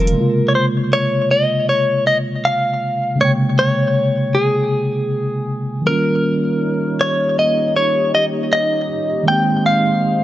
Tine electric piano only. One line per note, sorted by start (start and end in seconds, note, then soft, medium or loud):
0.00 0.11 D#3 medium
0.00 0.13 F3 medium
0.00 0.12 G3 medium
0.00 0.14 C4 medium
0.00 0.15 F4 medium
0.11 3.14 C#3 medium
0.11 3.15 G#3 medium
0.16 3.17 C3 medium
0.16 3.16 A#3 medium
0.21 3.18 F4 medium
3.16 5.79 C#3 medium
3.16 5.81 G#3 medium
3.20 5.83 C3 medium
3.20 5.82 A#3 medium
3.25 5.84 G5 medium
5.81 8.83 D#3 medium
5.81 5.92 F#3 soft
5.86 8.86 A#3 medium
5.86 8.87 C#4 medium
5.90 8.88 G3 medium
5.90 8.88 F4 medium
9.23 10.24 D#3 medium
9.23 10.24 G#3 medium
9.28 10.24 A#3 medium
9.28 10.24 C4 medium
9.32 10.24 G4 medium